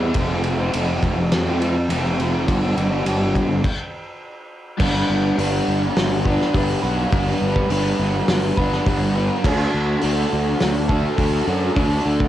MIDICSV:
0, 0, Header, 1, 5, 480
1, 0, Start_track
1, 0, Key_signature, 1, "major"
1, 0, Tempo, 580833
1, 128, Time_signature, 4, 2, 24, 8
1, 10150, End_track
2, 0, Start_track
2, 0, Title_t, "Overdriven electric guitar"
2, 0, Program_c, 0, 29
2, 0, Note_on_c, 0, 48, 83
2, 0, Note_on_c, 0, 52, 72
2, 13, Note_on_c, 0, 64, 72
2, 27, Note_on_c, 0, 60, 71
2, 38, Note_on_c, 0, 55, 67
2, 111, Note_off_c, 0, 48, 0
2, 115, Note_off_c, 0, 52, 0
2, 116, Note_off_c, 0, 64, 0
2, 123, Note_off_c, 0, 60, 0
2, 128, Note_off_c, 0, 55, 0
2, 139, Note_on_c, 0, 41, 88
2, 145, Note_on_c, 0, 48, 92
2, 147, Note_on_c, 0, 53, 92
2, 159, Note_on_c, 0, 57, 88
2, 162, Note_on_c, 0, 60, 97
2, 165, Note_on_c, 0, 65, 99
2, 258, Note_off_c, 0, 65, 0
2, 266, Note_off_c, 0, 60, 0
2, 268, Note_on_c, 0, 65, 70
2, 271, Note_off_c, 0, 57, 0
2, 276, Note_on_c, 0, 60, 78
2, 281, Note_on_c, 0, 57, 71
2, 283, Note_off_c, 0, 53, 0
2, 293, Note_on_c, 0, 53, 68
2, 482, Note_off_c, 0, 65, 0
2, 492, Note_on_c, 0, 65, 77
2, 493, Note_off_c, 0, 41, 0
2, 494, Note_off_c, 0, 60, 0
2, 496, Note_off_c, 0, 48, 0
2, 504, Note_on_c, 0, 60, 77
2, 506, Note_off_c, 0, 57, 0
2, 512, Note_off_c, 0, 53, 0
2, 516, Note_on_c, 0, 57, 58
2, 522, Note_on_c, 0, 53, 63
2, 613, Note_off_c, 0, 53, 0
2, 613, Note_on_c, 0, 41, 93
2, 620, Note_off_c, 0, 57, 0
2, 623, Note_off_c, 0, 60, 0
2, 623, Note_on_c, 0, 48, 99
2, 623, Note_on_c, 0, 53, 103
2, 626, Note_off_c, 0, 65, 0
2, 630, Note_on_c, 0, 57, 109
2, 633, Note_on_c, 0, 60, 104
2, 636, Note_on_c, 0, 65, 95
2, 977, Note_off_c, 0, 65, 0
2, 979, Note_off_c, 0, 57, 0
2, 980, Note_off_c, 0, 60, 0
2, 985, Note_off_c, 0, 53, 0
2, 1208, Note_on_c, 0, 65, 66
2, 1210, Note_off_c, 0, 41, 0
2, 1215, Note_off_c, 0, 48, 0
2, 1225, Note_on_c, 0, 60, 61
2, 1234, Note_on_c, 0, 57, 57
2, 1240, Note_on_c, 0, 53, 57
2, 1315, Note_off_c, 0, 53, 0
2, 1325, Note_on_c, 0, 53, 75
2, 1328, Note_off_c, 0, 57, 0
2, 1336, Note_off_c, 0, 60, 0
2, 1338, Note_on_c, 0, 57, 69
2, 1344, Note_off_c, 0, 65, 0
2, 1346, Note_on_c, 0, 60, 74
2, 1353, Note_on_c, 0, 65, 77
2, 1442, Note_off_c, 0, 65, 0
2, 1448, Note_off_c, 0, 53, 0
2, 1448, Note_off_c, 0, 60, 0
2, 1451, Note_off_c, 0, 57, 0
2, 1556, Note_on_c, 0, 41, 90
2, 1561, Note_on_c, 0, 48, 81
2, 1566, Note_on_c, 0, 53, 84
2, 1574, Note_on_c, 0, 57, 86
2, 1574, Note_on_c, 0, 60, 98
2, 1579, Note_on_c, 0, 65, 97
2, 1786, Note_off_c, 0, 53, 0
2, 1796, Note_on_c, 0, 53, 67
2, 1799, Note_off_c, 0, 57, 0
2, 1809, Note_on_c, 0, 57, 72
2, 1812, Note_off_c, 0, 60, 0
2, 1817, Note_off_c, 0, 65, 0
2, 1822, Note_on_c, 0, 60, 71
2, 1827, Note_on_c, 0, 65, 80
2, 1905, Note_off_c, 0, 65, 0
2, 1915, Note_on_c, 0, 65, 78
2, 1921, Note_off_c, 0, 60, 0
2, 1924, Note_off_c, 0, 57, 0
2, 1930, Note_off_c, 0, 53, 0
2, 1931, Note_on_c, 0, 60, 67
2, 1934, Note_on_c, 0, 57, 61
2, 1940, Note_on_c, 0, 53, 59
2, 2026, Note_off_c, 0, 65, 0
2, 2027, Note_off_c, 0, 41, 0
2, 2030, Note_off_c, 0, 48, 0
2, 2035, Note_off_c, 0, 60, 0
2, 2036, Note_off_c, 0, 57, 0
2, 2036, Note_on_c, 0, 43, 88
2, 2039, Note_off_c, 0, 53, 0
2, 2045, Note_on_c, 0, 55, 105
2, 2046, Note_on_c, 0, 50, 88
2, 2049, Note_on_c, 0, 59, 99
2, 2055, Note_on_c, 0, 62, 103
2, 2062, Note_on_c, 0, 67, 94
2, 2152, Note_off_c, 0, 67, 0
2, 2161, Note_off_c, 0, 62, 0
2, 2161, Note_on_c, 0, 67, 74
2, 2169, Note_off_c, 0, 59, 0
2, 2171, Note_on_c, 0, 62, 70
2, 2172, Note_off_c, 0, 55, 0
2, 2179, Note_on_c, 0, 59, 67
2, 2182, Note_on_c, 0, 55, 63
2, 2384, Note_off_c, 0, 67, 0
2, 2393, Note_on_c, 0, 67, 79
2, 2394, Note_off_c, 0, 62, 0
2, 2401, Note_off_c, 0, 43, 0
2, 2402, Note_off_c, 0, 59, 0
2, 2404, Note_on_c, 0, 62, 74
2, 2406, Note_off_c, 0, 50, 0
2, 2410, Note_off_c, 0, 55, 0
2, 2412, Note_on_c, 0, 59, 65
2, 2420, Note_on_c, 0, 55, 65
2, 2514, Note_off_c, 0, 55, 0
2, 2514, Note_on_c, 0, 43, 91
2, 2515, Note_on_c, 0, 50, 100
2, 2517, Note_off_c, 0, 59, 0
2, 2523, Note_on_c, 0, 55, 92
2, 2527, Note_on_c, 0, 59, 97
2, 2529, Note_off_c, 0, 62, 0
2, 2529, Note_off_c, 0, 67, 0
2, 2538, Note_on_c, 0, 67, 101
2, 2539, Note_on_c, 0, 62, 108
2, 2874, Note_off_c, 0, 67, 0
2, 2876, Note_off_c, 0, 62, 0
2, 2881, Note_off_c, 0, 59, 0
2, 2883, Note_off_c, 0, 55, 0
2, 2986, Note_off_c, 0, 43, 0
2, 2987, Note_off_c, 0, 50, 0
2, 3946, Note_on_c, 0, 55, 88
2, 3955, Note_on_c, 0, 62, 99
2, 3970, Note_on_c, 0, 59, 93
2, 3974, Note_on_c, 0, 71, 98
2, 4431, Note_off_c, 0, 55, 0
2, 4435, Note_on_c, 0, 55, 75
2, 4444, Note_off_c, 0, 62, 0
2, 4447, Note_on_c, 0, 62, 82
2, 4451, Note_off_c, 0, 59, 0
2, 4454, Note_on_c, 0, 59, 84
2, 4465, Note_off_c, 0, 71, 0
2, 4468, Note_on_c, 0, 71, 93
2, 5159, Note_off_c, 0, 71, 0
2, 5168, Note_off_c, 0, 59, 0
2, 5169, Note_on_c, 0, 71, 69
2, 5178, Note_on_c, 0, 59, 66
2, 5189, Note_off_c, 0, 62, 0
2, 5192, Note_on_c, 0, 62, 56
2, 5392, Note_off_c, 0, 55, 0
2, 5402, Note_on_c, 0, 55, 66
2, 5409, Note_off_c, 0, 62, 0
2, 5411, Note_off_c, 0, 59, 0
2, 5412, Note_on_c, 0, 62, 76
2, 5420, Note_off_c, 0, 71, 0
2, 5421, Note_on_c, 0, 59, 79
2, 5430, Note_on_c, 0, 71, 79
2, 5626, Note_off_c, 0, 71, 0
2, 5636, Note_on_c, 0, 71, 77
2, 5645, Note_off_c, 0, 59, 0
2, 5655, Note_on_c, 0, 59, 64
2, 5661, Note_off_c, 0, 62, 0
2, 5664, Note_on_c, 0, 62, 53
2, 5867, Note_off_c, 0, 55, 0
2, 5877, Note_on_c, 0, 55, 86
2, 5884, Note_off_c, 0, 59, 0
2, 5885, Note_off_c, 0, 62, 0
2, 5888, Note_on_c, 0, 62, 91
2, 5894, Note_on_c, 0, 59, 108
2, 5897, Note_off_c, 0, 71, 0
2, 5907, Note_on_c, 0, 71, 101
2, 6354, Note_off_c, 0, 55, 0
2, 6364, Note_on_c, 0, 55, 79
2, 6368, Note_off_c, 0, 59, 0
2, 6370, Note_off_c, 0, 62, 0
2, 6373, Note_on_c, 0, 62, 84
2, 6376, Note_off_c, 0, 71, 0
2, 6378, Note_on_c, 0, 59, 88
2, 6386, Note_on_c, 0, 71, 93
2, 7071, Note_off_c, 0, 71, 0
2, 7081, Note_on_c, 0, 71, 76
2, 7086, Note_off_c, 0, 59, 0
2, 7096, Note_on_c, 0, 59, 76
2, 7105, Note_off_c, 0, 62, 0
2, 7108, Note_on_c, 0, 62, 63
2, 7313, Note_off_c, 0, 55, 0
2, 7322, Note_on_c, 0, 55, 81
2, 7327, Note_off_c, 0, 62, 0
2, 7330, Note_on_c, 0, 62, 78
2, 7337, Note_off_c, 0, 59, 0
2, 7341, Note_off_c, 0, 71, 0
2, 7347, Note_on_c, 0, 59, 82
2, 7351, Note_on_c, 0, 71, 79
2, 7551, Note_off_c, 0, 71, 0
2, 7561, Note_on_c, 0, 71, 68
2, 7565, Note_off_c, 0, 59, 0
2, 7575, Note_on_c, 0, 59, 74
2, 7586, Note_off_c, 0, 62, 0
2, 7589, Note_on_c, 0, 62, 60
2, 7790, Note_off_c, 0, 71, 0
2, 7791, Note_off_c, 0, 55, 0
2, 7797, Note_off_c, 0, 59, 0
2, 7798, Note_on_c, 0, 50, 94
2, 7805, Note_off_c, 0, 62, 0
2, 7808, Note_on_c, 0, 62, 94
2, 7818, Note_on_c, 0, 66, 88
2, 7824, Note_on_c, 0, 69, 100
2, 8273, Note_off_c, 0, 50, 0
2, 8276, Note_on_c, 0, 50, 80
2, 8282, Note_off_c, 0, 62, 0
2, 8285, Note_on_c, 0, 62, 91
2, 8292, Note_off_c, 0, 66, 0
2, 8295, Note_on_c, 0, 66, 85
2, 8298, Note_off_c, 0, 69, 0
2, 8302, Note_on_c, 0, 69, 92
2, 8988, Note_off_c, 0, 69, 0
2, 8992, Note_on_c, 0, 69, 66
2, 8999, Note_off_c, 0, 66, 0
2, 9009, Note_on_c, 0, 66, 63
2, 9020, Note_off_c, 0, 62, 0
2, 9024, Note_on_c, 0, 62, 55
2, 9217, Note_off_c, 0, 50, 0
2, 9227, Note_on_c, 0, 50, 76
2, 9235, Note_off_c, 0, 62, 0
2, 9237, Note_off_c, 0, 66, 0
2, 9238, Note_on_c, 0, 62, 72
2, 9247, Note_on_c, 0, 66, 85
2, 9252, Note_off_c, 0, 69, 0
2, 9256, Note_on_c, 0, 69, 78
2, 9475, Note_off_c, 0, 69, 0
2, 9478, Note_on_c, 0, 69, 64
2, 9483, Note_off_c, 0, 66, 0
2, 9492, Note_on_c, 0, 66, 70
2, 9501, Note_off_c, 0, 62, 0
2, 9504, Note_on_c, 0, 62, 53
2, 9702, Note_off_c, 0, 50, 0
2, 9711, Note_on_c, 0, 50, 96
2, 9718, Note_off_c, 0, 62, 0
2, 9721, Note_on_c, 0, 62, 99
2, 9724, Note_off_c, 0, 66, 0
2, 9734, Note_on_c, 0, 66, 86
2, 9738, Note_off_c, 0, 69, 0
2, 9741, Note_on_c, 0, 69, 96
2, 10150, Note_off_c, 0, 50, 0
2, 10150, Note_off_c, 0, 62, 0
2, 10150, Note_off_c, 0, 66, 0
2, 10150, Note_off_c, 0, 69, 0
2, 10150, End_track
3, 0, Start_track
3, 0, Title_t, "Fingered electric bass"
3, 0, Program_c, 1, 33
3, 0, Note_on_c, 1, 40, 86
3, 93, Note_off_c, 1, 40, 0
3, 125, Note_on_c, 1, 29, 99
3, 573, Note_off_c, 1, 29, 0
3, 620, Note_on_c, 1, 29, 86
3, 837, Note_off_c, 1, 29, 0
3, 849, Note_on_c, 1, 29, 90
3, 1071, Note_off_c, 1, 29, 0
3, 1091, Note_on_c, 1, 41, 95
3, 1536, Note_off_c, 1, 41, 0
3, 1575, Note_on_c, 1, 29, 89
3, 2053, Note_off_c, 1, 29, 0
3, 2053, Note_on_c, 1, 31, 88
3, 2273, Note_off_c, 1, 31, 0
3, 2293, Note_on_c, 1, 31, 88
3, 2513, Note_off_c, 1, 31, 0
3, 2531, Note_on_c, 1, 31, 78
3, 2976, Note_off_c, 1, 31, 0
3, 3967, Note_on_c, 1, 31, 93
3, 4141, Note_off_c, 1, 31, 0
3, 4211, Note_on_c, 1, 31, 88
3, 4384, Note_off_c, 1, 31, 0
3, 4447, Note_on_c, 1, 31, 87
3, 4621, Note_off_c, 1, 31, 0
3, 4693, Note_on_c, 1, 31, 95
3, 4865, Note_off_c, 1, 31, 0
3, 4932, Note_on_c, 1, 31, 93
3, 5277, Note_off_c, 1, 31, 0
3, 5407, Note_on_c, 1, 31, 82
3, 5581, Note_off_c, 1, 31, 0
3, 5647, Note_on_c, 1, 35, 96
3, 5821, Note_off_c, 1, 35, 0
3, 5887, Note_on_c, 1, 31, 94
3, 6060, Note_off_c, 1, 31, 0
3, 6128, Note_on_c, 1, 31, 88
3, 6302, Note_off_c, 1, 31, 0
3, 6365, Note_on_c, 1, 31, 87
3, 6539, Note_off_c, 1, 31, 0
3, 6605, Note_on_c, 1, 31, 108
3, 6780, Note_off_c, 1, 31, 0
3, 6850, Note_on_c, 1, 31, 95
3, 7023, Note_off_c, 1, 31, 0
3, 7088, Note_on_c, 1, 31, 87
3, 7262, Note_off_c, 1, 31, 0
3, 7325, Note_on_c, 1, 31, 94
3, 7673, Note_off_c, 1, 31, 0
3, 7803, Note_on_c, 1, 38, 102
3, 7978, Note_off_c, 1, 38, 0
3, 8052, Note_on_c, 1, 38, 94
3, 8224, Note_off_c, 1, 38, 0
3, 8293, Note_on_c, 1, 38, 92
3, 8465, Note_off_c, 1, 38, 0
3, 8537, Note_on_c, 1, 38, 102
3, 8707, Note_off_c, 1, 38, 0
3, 8776, Note_on_c, 1, 38, 101
3, 9120, Note_off_c, 1, 38, 0
3, 9243, Note_on_c, 1, 38, 81
3, 9419, Note_off_c, 1, 38, 0
3, 9483, Note_on_c, 1, 42, 93
3, 9658, Note_off_c, 1, 42, 0
3, 9726, Note_on_c, 1, 38, 106
3, 9900, Note_off_c, 1, 38, 0
3, 9963, Note_on_c, 1, 38, 80
3, 10138, Note_off_c, 1, 38, 0
3, 10150, End_track
4, 0, Start_track
4, 0, Title_t, "Muted overdriven electric guitar strokes"
4, 987, Note_on_c, 9, 29, 55
4, 1070, Note_off_c, 9, 29, 0
4, 1452, Note_on_c, 9, 29, 57
4, 1535, Note_off_c, 9, 29, 0
4, 2884, Note_on_c, 9, 29, 50
4, 2967, Note_off_c, 9, 29, 0
4, 10150, End_track
5, 0, Start_track
5, 0, Title_t, "Drums"
5, 117, Note_on_c, 9, 51, 98
5, 124, Note_on_c, 9, 36, 109
5, 199, Note_off_c, 9, 51, 0
5, 207, Note_off_c, 9, 36, 0
5, 360, Note_on_c, 9, 51, 71
5, 443, Note_off_c, 9, 51, 0
5, 607, Note_on_c, 9, 51, 110
5, 689, Note_off_c, 9, 51, 0
5, 849, Note_on_c, 9, 36, 79
5, 854, Note_on_c, 9, 51, 63
5, 932, Note_off_c, 9, 36, 0
5, 936, Note_off_c, 9, 51, 0
5, 1089, Note_on_c, 9, 51, 99
5, 1092, Note_on_c, 9, 38, 110
5, 1172, Note_off_c, 9, 51, 0
5, 1174, Note_off_c, 9, 38, 0
5, 1335, Note_on_c, 9, 51, 70
5, 1418, Note_off_c, 9, 51, 0
5, 1570, Note_on_c, 9, 51, 110
5, 1653, Note_off_c, 9, 51, 0
5, 1815, Note_on_c, 9, 51, 64
5, 1897, Note_off_c, 9, 51, 0
5, 2052, Note_on_c, 9, 36, 114
5, 2052, Note_on_c, 9, 51, 105
5, 2135, Note_off_c, 9, 36, 0
5, 2135, Note_off_c, 9, 51, 0
5, 2293, Note_on_c, 9, 51, 68
5, 2376, Note_off_c, 9, 51, 0
5, 2530, Note_on_c, 9, 51, 109
5, 2612, Note_off_c, 9, 51, 0
5, 2772, Note_on_c, 9, 36, 75
5, 2773, Note_on_c, 9, 51, 64
5, 2854, Note_off_c, 9, 36, 0
5, 2856, Note_off_c, 9, 51, 0
5, 3010, Note_on_c, 9, 36, 115
5, 3014, Note_on_c, 9, 49, 93
5, 3093, Note_off_c, 9, 36, 0
5, 3097, Note_off_c, 9, 49, 0
5, 3966, Note_on_c, 9, 36, 120
5, 3966, Note_on_c, 9, 49, 125
5, 4049, Note_off_c, 9, 36, 0
5, 4049, Note_off_c, 9, 49, 0
5, 4451, Note_on_c, 9, 46, 69
5, 4533, Note_off_c, 9, 46, 0
5, 4929, Note_on_c, 9, 46, 74
5, 4932, Note_on_c, 9, 38, 126
5, 5012, Note_off_c, 9, 46, 0
5, 5014, Note_off_c, 9, 38, 0
5, 5169, Note_on_c, 9, 36, 76
5, 5252, Note_off_c, 9, 36, 0
5, 5299, Note_on_c, 9, 38, 32
5, 5381, Note_off_c, 9, 38, 0
5, 5407, Note_on_c, 9, 46, 76
5, 5409, Note_on_c, 9, 36, 84
5, 5490, Note_off_c, 9, 46, 0
5, 5491, Note_off_c, 9, 36, 0
5, 5885, Note_on_c, 9, 46, 71
5, 5888, Note_on_c, 9, 36, 127
5, 5967, Note_off_c, 9, 46, 0
5, 5971, Note_off_c, 9, 36, 0
5, 6246, Note_on_c, 9, 36, 78
5, 6329, Note_off_c, 9, 36, 0
5, 6364, Note_on_c, 9, 46, 74
5, 6446, Note_off_c, 9, 46, 0
5, 6842, Note_on_c, 9, 46, 69
5, 6844, Note_on_c, 9, 38, 121
5, 6924, Note_off_c, 9, 46, 0
5, 6927, Note_off_c, 9, 38, 0
5, 7086, Note_on_c, 9, 36, 84
5, 7168, Note_off_c, 9, 36, 0
5, 7209, Note_on_c, 9, 38, 33
5, 7292, Note_off_c, 9, 38, 0
5, 7326, Note_on_c, 9, 36, 98
5, 7326, Note_on_c, 9, 46, 67
5, 7408, Note_off_c, 9, 36, 0
5, 7408, Note_off_c, 9, 46, 0
5, 7805, Note_on_c, 9, 36, 115
5, 7807, Note_on_c, 9, 57, 113
5, 7887, Note_off_c, 9, 36, 0
5, 7890, Note_off_c, 9, 57, 0
5, 8276, Note_on_c, 9, 46, 73
5, 8358, Note_off_c, 9, 46, 0
5, 8763, Note_on_c, 9, 46, 63
5, 8765, Note_on_c, 9, 38, 121
5, 8846, Note_off_c, 9, 46, 0
5, 8848, Note_off_c, 9, 38, 0
5, 9002, Note_on_c, 9, 36, 81
5, 9085, Note_off_c, 9, 36, 0
5, 9238, Note_on_c, 9, 46, 69
5, 9241, Note_on_c, 9, 36, 98
5, 9321, Note_off_c, 9, 46, 0
5, 9323, Note_off_c, 9, 36, 0
5, 9723, Note_on_c, 9, 36, 117
5, 9724, Note_on_c, 9, 46, 75
5, 9805, Note_off_c, 9, 36, 0
5, 9806, Note_off_c, 9, 46, 0
5, 10084, Note_on_c, 9, 36, 78
5, 10150, Note_off_c, 9, 36, 0
5, 10150, End_track
0, 0, End_of_file